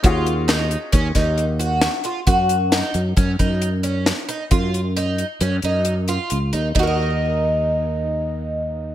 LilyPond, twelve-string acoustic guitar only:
\new Staff \with { instrumentName = "Twelve-string acoustic guitar" } { \time 5/4 \key ees \minor \tempo 4 = 134 f'4 ees'4 des'8 ees'4 ges'4 f'8 | ges'4 ees'4 des'8 ees'4 des'4 ees'8 | f'4 ees'4 des'8 ees'4 f'4 ees'8 | <ees' ges' bes' ees''>1~ <ees' ges' bes' ees''>4 | }